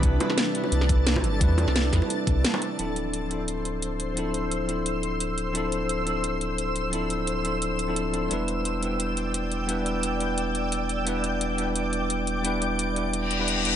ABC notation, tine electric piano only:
X:1
M:4/4
L:1/16
Q:"Swing 16ths" 1/4=174
K:Ddor
V:1 name="Tine electric piano"
[G,CDEB]6 [G,CDEB]8- [G,CDEB]2 | [G,CDEB]6 [G,CDEB]8- [G,CDEB]2 | [F,CDEA]6 [F,CDEA]8- [F,CDEA]2 | [F,CDEA]6 [F,CDEA]8- [F,CDEA]2 |
[F,CDEA]6 [F,CDEA]8- [F,CDEA]2 | [F,CDEA]6 [F,CDEA]4- [F,CDEA] [F,CDEA]3 [F,CDEA]2 | [G,B,DEB]6 [G,B,DEB]8- [G,B,DEB]2 | [G,B,DEB]6 [G,B,DEB]8- [G,B,DEB]2 |
[G,B,DEB]6 [G,B,DEB]8- [G,B,DEB]2 | [G,B,DEB]6 [G,B,DEB]4- [G,B,DEB] [G,B,DEB]3 [G,B,DEB]2 |]